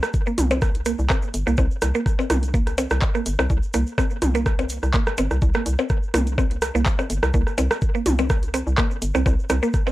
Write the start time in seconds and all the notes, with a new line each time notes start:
0.03 cross-stick, shaker
0.14 kick, shaker
0.26 A#3, shaker
0.38 C2, closed hi-hat, mid tom, shaker
0.51 C4, closed hi-hat, percussion blips, shaker
0.62 kick, cross-stick, shaker
0.75 closed hi-hat, shaker
0.85 A#3, cross-stick, closed hi-hat, shaker
0.99 C2, shaker
1.10 C4, kick, cross-stick, clap, percussion blips, shaker
1.22 shaker
1.34 G1, closed hi-hat, shaker
1.47 C2 A#3, cross-stick, shaker
1.57 C2 C4, kick, cross-stick, percussion blips, shaker
1.71 shaker
1.82 C2, cross-stick, closed hi-hat, shaker
1.95 A#3, shaker
2.06 kick, cross-stick, shaker
2.19 C4, percussion blips, shaker
2.30 C2, cross-stick, closed hi-hat, mid tom, shaker
2.43 closed hi-hat, shaker
2.54 A#3, kick, shaker
2.67 cross-stick, closed hi-hat, shaker
2.78 C4, closed hi-hat, percussion blips, shaker
2.90 C2, cross-stick, shaker
3.01 kick, clap, shaker
3.15 A#3, cross-stick, shaker
3.26 G1, closed hi-hat, shaker
3.39 C2 C4, cross-stick, percussion blips, shaker
3.50 C2, kick, shaker
3.63 shaker
3.74 C2 A#3, cross-stick, closed hi-hat, shaker
3.87 shaker
3.98 C4, kick, cross-stick, percussion blips, shaker
4.10 shaker
4.22 C2, cross-stick, closed hi-hat, mid tom, shaker
4.35 A#3, closed hi-hat, shaker
4.46 kick, cross-stick, shaker
4.59 C4, closed hi-hat, percussion blips, shaker
4.69 closed hi-hat, shaker
4.83 C2, cross-stick, shaker
4.94 A#3, kick, clap, shaker
5.07 cross-stick, shaker
5.18 G1 C4, closed hi-hat, percussion blips, shaker
5.31 C2, cross-stick, shaker
5.42 C2, kick, shaker
5.54 A#3, cross-stick, shaker
5.66 C2, closed hi-hat, shaker
5.79 C4, percussion blips, shaker
5.89 kick, cross-stick, shaker
6.03 shaker
6.14 C2 A#3, cross-stick, closed hi-hat, mid tom, shaker
6.27 closed hi-hat, shaker
6.38 C4, kick, cross-stick, percussion blips, shaker
6.51 closed hi-hat, shaker
6.62 cross-stick, closed hi-hat, shaker
6.75 C2 A#3, shaker
6.86 kick, clap, shaker
6.99 C4, cross-stick, percussion blips, shaker
7.10 G1, closed hi-hat, shaker
7.23 C2, cross-stick, shaker
7.34 C2 A#3, kick, shaker
7.47 cross-stick, shaker
7.58 C2 C4, closed hi-hat, percussion blips, shaker
7.71 cross-stick, shaker
7.82 kick, shaker
7.95 A#3, shaker
8.06 C2, closed hi-hat, mid tom, shaker
8.19 C4, closed hi-hat, percussion blips, shaker
8.30 kick, cross-stick, shaker
8.43 closed hi-hat, shaker
8.54 C4, cross-stick, closed hi-hat, shaker
8.67 C2, shaker
8.78 A#3, kick, cross-stick, clap, percussion blips, shaker
8.91 shaker
9.02 G1, closed hi-hat, shaker
9.15 C2 C4, cross-stick, shaker
9.26 C2 C4, kick, cross-stick, percussion blips, shaker
9.39 shaker
9.49 C2 C4, cross-stick, closed hi-hat, shaker
9.63 A#3, shaker
9.74 kick, cross-stick, shaker
9.87 C4, percussion blips, shaker